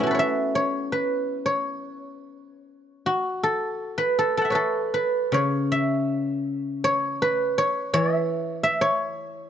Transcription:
0, 0, Header, 1, 2, 480
1, 0, Start_track
1, 0, Tempo, 745342
1, 583, Time_signature, 2, 2, 24, 8
1, 584, Tempo, 717703
1, 2504, Tempo, 771208
1, 4424, Tempo, 708383
1, 6210, End_track
2, 0, Start_track
2, 0, Title_t, "Guzheng"
2, 0, Program_c, 0, 107
2, 0, Note_on_c, 0, 47, 49
2, 0, Note_on_c, 0, 57, 27
2, 0, Note_on_c, 0, 59, 30
2, 0, Note_on_c, 0, 61, 32
2, 0, Note_on_c, 0, 64, 39
2, 0, Note_on_c, 0, 73, 64
2, 22, Note_on_c, 0, 66, 42
2, 43, Note_on_c, 0, 69, 40
2, 69, Note_on_c, 0, 71, 49
2, 91, Note_off_c, 0, 73, 0
2, 94, Note_on_c, 0, 73, 46
2, 106, Note_off_c, 0, 47, 0
2, 123, Note_on_c, 0, 76, 69
2, 353, Note_off_c, 0, 73, 0
2, 356, Note_on_c, 0, 73, 64
2, 592, Note_off_c, 0, 71, 0
2, 595, Note_on_c, 0, 71, 57
2, 949, Note_off_c, 0, 73, 0
2, 952, Note_on_c, 0, 73, 58
2, 1257, Note_off_c, 0, 76, 0
2, 1491, Note_off_c, 0, 69, 0
2, 1627, Note_off_c, 0, 66, 0
2, 1723, Note_off_c, 0, 64, 0
2, 1886, Note_off_c, 0, 61, 0
2, 1963, Note_off_c, 0, 71, 0
2, 2000, Note_off_c, 0, 59, 0
2, 2025, Note_on_c, 0, 66, 59
2, 2133, Note_off_c, 0, 57, 0
2, 2227, Note_off_c, 0, 73, 0
2, 2275, Note_on_c, 0, 69, 67
2, 2629, Note_on_c, 0, 71, 67
2, 2756, Note_off_c, 0, 69, 0
2, 2759, Note_on_c, 0, 69, 61
2, 2873, Note_off_c, 0, 69, 0
2, 2875, Note_on_c, 0, 69, 57
2, 2882, Note_on_c, 0, 81, 27
2, 2901, Note_on_c, 0, 78, 30
2, 2920, Note_on_c, 0, 76, 34
2, 2955, Note_on_c, 0, 73, 39
2, 2964, Note_off_c, 0, 71, 0
2, 2966, Note_on_c, 0, 71, 44
2, 2983, Note_off_c, 0, 69, 0
2, 2985, Note_on_c, 0, 69, 64
2, 3224, Note_off_c, 0, 71, 0
2, 3227, Note_on_c, 0, 71, 56
2, 3464, Note_on_c, 0, 49, 49
2, 3475, Note_off_c, 0, 73, 0
2, 3478, Note_on_c, 0, 73, 74
2, 3572, Note_off_c, 0, 66, 0
2, 3709, Note_off_c, 0, 76, 0
2, 3711, Note_on_c, 0, 76, 68
2, 3784, Note_off_c, 0, 81, 0
2, 3900, Note_off_c, 0, 78, 0
2, 4352, Note_off_c, 0, 69, 0
2, 4409, Note_off_c, 0, 73, 0
2, 4411, Note_on_c, 0, 73, 79
2, 4507, Note_off_c, 0, 71, 0
2, 4666, Note_on_c, 0, 71, 69
2, 4815, Note_off_c, 0, 76, 0
2, 4908, Note_off_c, 0, 73, 0
2, 4909, Note_off_c, 0, 49, 0
2, 4911, Note_on_c, 0, 73, 75
2, 5151, Note_on_c, 0, 52, 49
2, 5152, Note_off_c, 0, 73, 0
2, 5152, Note_on_c, 0, 73, 82
2, 5294, Note_off_c, 0, 73, 0
2, 5294, Note_on_c, 0, 76, 82
2, 5622, Note_off_c, 0, 76, 0
2, 5625, Note_on_c, 0, 76, 80
2, 5746, Note_on_c, 0, 73, 79
2, 6053, Note_off_c, 0, 71, 0
2, 6210, Note_off_c, 0, 52, 0
2, 6210, Note_off_c, 0, 73, 0
2, 6210, Note_off_c, 0, 76, 0
2, 6210, End_track
0, 0, End_of_file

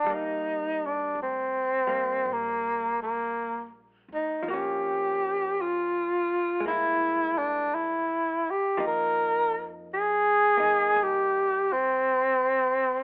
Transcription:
0, 0, Header, 1, 4, 480
1, 0, Start_track
1, 0, Key_signature, -3, "major"
1, 0, Tempo, 1096892
1, 19, Time_signature, 4, 2, 24, 8
1, 2419, Tempo, 1081081
1, 5751, End_track
2, 0, Start_track
2, 0, Title_t, "Tenor saxophone"
2, 0, Program_c, 0, 66
2, 0, Note_on_c, 0, 62, 78
2, 59, Note_on_c, 0, 63, 75
2, 66, Note_off_c, 0, 62, 0
2, 375, Note_on_c, 0, 62, 71
2, 381, Note_off_c, 0, 63, 0
2, 519, Note_off_c, 0, 62, 0
2, 535, Note_on_c, 0, 60, 73
2, 1018, Note_on_c, 0, 58, 78
2, 1025, Note_off_c, 0, 60, 0
2, 1320, Note_off_c, 0, 58, 0
2, 1322, Note_on_c, 0, 58, 79
2, 1617, Note_off_c, 0, 58, 0
2, 1811, Note_on_c, 0, 63, 70
2, 1946, Note_off_c, 0, 63, 0
2, 1969, Note_on_c, 0, 67, 79
2, 2457, Note_on_c, 0, 65, 83
2, 2464, Note_off_c, 0, 67, 0
2, 2921, Note_off_c, 0, 65, 0
2, 2927, Note_on_c, 0, 64, 88
2, 3242, Note_on_c, 0, 62, 82
2, 3248, Note_off_c, 0, 64, 0
2, 3404, Note_on_c, 0, 64, 82
2, 3411, Note_off_c, 0, 62, 0
2, 3740, Note_on_c, 0, 67, 77
2, 3746, Note_off_c, 0, 64, 0
2, 3881, Note_off_c, 0, 67, 0
2, 3903, Note_on_c, 0, 70, 88
2, 4265, Note_off_c, 0, 70, 0
2, 4376, Note_on_c, 0, 68, 93
2, 4862, Note_on_c, 0, 67, 89
2, 4868, Note_off_c, 0, 68, 0
2, 5171, Note_on_c, 0, 60, 84
2, 5177, Note_off_c, 0, 67, 0
2, 5751, Note_off_c, 0, 60, 0
2, 5751, End_track
3, 0, Start_track
3, 0, Title_t, "Hollow-body jazz guitar"
3, 0, Program_c, 1, 26
3, 28, Note_on_c, 1, 55, 42
3, 44, Note_on_c, 1, 58, 45
3, 814, Note_off_c, 1, 55, 0
3, 819, Note_on_c, 1, 55, 33
3, 821, Note_off_c, 1, 58, 0
3, 826, Note_on_c, 1, 58, 36
3, 1935, Note_off_c, 1, 55, 0
3, 1937, Note_on_c, 1, 53, 45
3, 1943, Note_off_c, 1, 58, 0
3, 1962, Note_on_c, 1, 58, 46
3, 1985, Note_on_c, 1, 61, 51
3, 2895, Note_off_c, 1, 53, 0
3, 2897, Note_on_c, 1, 56, 44
3, 2913, Note_off_c, 1, 58, 0
3, 2920, Note_on_c, 1, 58, 44
3, 2925, Note_off_c, 1, 61, 0
3, 2942, Note_on_c, 1, 64, 44
3, 3859, Note_off_c, 1, 56, 0
3, 3859, Note_off_c, 1, 58, 0
3, 3860, Note_on_c, 1, 53, 46
3, 3864, Note_on_c, 1, 58, 46
3, 3870, Note_off_c, 1, 64, 0
3, 3872, Note_on_c, 1, 63, 52
3, 4654, Note_off_c, 1, 58, 0
3, 4659, Note_on_c, 1, 58, 39
3, 4664, Note_off_c, 1, 63, 0
3, 4669, Note_on_c, 1, 63, 36
3, 5751, Note_off_c, 1, 53, 0
3, 5751, Note_off_c, 1, 58, 0
3, 5751, Note_off_c, 1, 63, 0
3, 5751, End_track
4, 0, Start_track
4, 0, Title_t, "Upright bass"
4, 0, Program_c, 2, 32
4, 19, Note_on_c, 2, 39, 66
4, 485, Note_off_c, 2, 39, 0
4, 502, Note_on_c, 2, 38, 58
4, 968, Note_off_c, 2, 38, 0
4, 985, Note_on_c, 2, 34, 73
4, 1766, Note_off_c, 2, 34, 0
4, 1788, Note_on_c, 2, 38, 55
4, 1933, Note_off_c, 2, 38, 0
4, 1940, Note_on_c, 2, 31, 70
4, 2885, Note_off_c, 2, 31, 0
4, 2915, Note_on_c, 2, 36, 74
4, 3851, Note_off_c, 2, 36, 0
4, 3872, Note_on_c, 2, 41, 72
4, 4649, Note_off_c, 2, 41, 0
4, 4674, Note_on_c, 2, 42, 62
4, 4816, Note_off_c, 2, 42, 0
4, 4832, Note_on_c, 2, 36, 75
4, 5751, Note_off_c, 2, 36, 0
4, 5751, End_track
0, 0, End_of_file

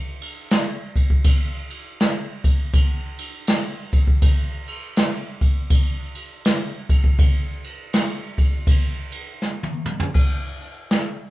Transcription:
0, 0, Header, 1, 2, 480
1, 0, Start_track
1, 0, Tempo, 743494
1, 805, Time_signature, 4, 2, 24, 8
1, 7297, End_track
2, 0, Start_track
2, 0, Title_t, "Drums"
2, 139, Note_on_c, 9, 49, 58
2, 203, Note_off_c, 9, 49, 0
2, 326, Note_on_c, 9, 49, 70
2, 332, Note_on_c, 9, 38, 114
2, 390, Note_off_c, 9, 49, 0
2, 397, Note_off_c, 9, 38, 0
2, 617, Note_on_c, 9, 36, 82
2, 620, Note_on_c, 9, 49, 69
2, 682, Note_off_c, 9, 36, 0
2, 684, Note_off_c, 9, 49, 0
2, 711, Note_on_c, 9, 36, 76
2, 776, Note_off_c, 9, 36, 0
2, 802, Note_on_c, 9, 49, 85
2, 805, Note_on_c, 9, 36, 110
2, 867, Note_off_c, 9, 49, 0
2, 870, Note_off_c, 9, 36, 0
2, 1098, Note_on_c, 9, 49, 62
2, 1163, Note_off_c, 9, 49, 0
2, 1290, Note_on_c, 9, 49, 79
2, 1296, Note_on_c, 9, 38, 107
2, 1354, Note_off_c, 9, 49, 0
2, 1361, Note_off_c, 9, 38, 0
2, 1577, Note_on_c, 9, 36, 90
2, 1577, Note_on_c, 9, 49, 59
2, 1641, Note_off_c, 9, 49, 0
2, 1642, Note_off_c, 9, 36, 0
2, 1766, Note_on_c, 9, 36, 106
2, 1766, Note_on_c, 9, 49, 75
2, 1830, Note_off_c, 9, 49, 0
2, 1831, Note_off_c, 9, 36, 0
2, 2056, Note_on_c, 9, 49, 60
2, 2121, Note_off_c, 9, 49, 0
2, 2242, Note_on_c, 9, 49, 76
2, 2248, Note_on_c, 9, 38, 105
2, 2306, Note_off_c, 9, 49, 0
2, 2313, Note_off_c, 9, 38, 0
2, 2536, Note_on_c, 9, 49, 62
2, 2537, Note_on_c, 9, 36, 92
2, 2601, Note_off_c, 9, 36, 0
2, 2601, Note_off_c, 9, 49, 0
2, 2631, Note_on_c, 9, 36, 81
2, 2696, Note_off_c, 9, 36, 0
2, 2724, Note_on_c, 9, 49, 82
2, 2726, Note_on_c, 9, 36, 114
2, 2788, Note_off_c, 9, 49, 0
2, 2790, Note_off_c, 9, 36, 0
2, 3017, Note_on_c, 9, 49, 65
2, 3081, Note_off_c, 9, 49, 0
2, 3204, Note_on_c, 9, 49, 67
2, 3211, Note_on_c, 9, 38, 105
2, 3269, Note_off_c, 9, 49, 0
2, 3275, Note_off_c, 9, 38, 0
2, 3495, Note_on_c, 9, 36, 88
2, 3496, Note_on_c, 9, 49, 53
2, 3560, Note_off_c, 9, 36, 0
2, 3561, Note_off_c, 9, 49, 0
2, 3681, Note_on_c, 9, 49, 86
2, 3683, Note_on_c, 9, 36, 115
2, 3745, Note_off_c, 9, 49, 0
2, 3747, Note_off_c, 9, 36, 0
2, 3969, Note_on_c, 9, 49, 57
2, 4034, Note_off_c, 9, 49, 0
2, 4163, Note_on_c, 9, 49, 83
2, 4169, Note_on_c, 9, 38, 111
2, 4227, Note_off_c, 9, 49, 0
2, 4234, Note_off_c, 9, 38, 0
2, 4451, Note_on_c, 9, 36, 91
2, 4452, Note_on_c, 9, 49, 60
2, 4515, Note_off_c, 9, 36, 0
2, 4516, Note_off_c, 9, 49, 0
2, 4545, Note_on_c, 9, 36, 79
2, 4610, Note_off_c, 9, 36, 0
2, 4641, Note_on_c, 9, 36, 123
2, 4642, Note_on_c, 9, 49, 82
2, 4705, Note_off_c, 9, 36, 0
2, 4706, Note_off_c, 9, 49, 0
2, 4933, Note_on_c, 9, 49, 61
2, 4998, Note_off_c, 9, 49, 0
2, 5119, Note_on_c, 9, 49, 91
2, 5126, Note_on_c, 9, 38, 107
2, 5184, Note_off_c, 9, 49, 0
2, 5190, Note_off_c, 9, 38, 0
2, 5410, Note_on_c, 9, 36, 85
2, 5410, Note_on_c, 9, 49, 65
2, 5475, Note_off_c, 9, 36, 0
2, 5475, Note_off_c, 9, 49, 0
2, 5597, Note_on_c, 9, 36, 115
2, 5597, Note_on_c, 9, 49, 89
2, 5662, Note_off_c, 9, 36, 0
2, 5662, Note_off_c, 9, 49, 0
2, 5888, Note_on_c, 9, 49, 66
2, 5952, Note_off_c, 9, 49, 0
2, 6081, Note_on_c, 9, 38, 59
2, 6146, Note_off_c, 9, 38, 0
2, 6219, Note_on_c, 9, 48, 71
2, 6284, Note_off_c, 9, 48, 0
2, 6363, Note_on_c, 9, 45, 95
2, 6428, Note_off_c, 9, 45, 0
2, 6454, Note_on_c, 9, 43, 89
2, 6518, Note_off_c, 9, 43, 0
2, 6546, Note_on_c, 9, 57, 111
2, 6553, Note_on_c, 9, 36, 103
2, 6611, Note_off_c, 9, 57, 0
2, 6618, Note_off_c, 9, 36, 0
2, 6848, Note_on_c, 9, 46, 56
2, 6912, Note_off_c, 9, 46, 0
2, 7037, Note_on_c, 9, 46, 64
2, 7044, Note_on_c, 9, 38, 102
2, 7102, Note_off_c, 9, 46, 0
2, 7108, Note_off_c, 9, 38, 0
2, 7297, End_track
0, 0, End_of_file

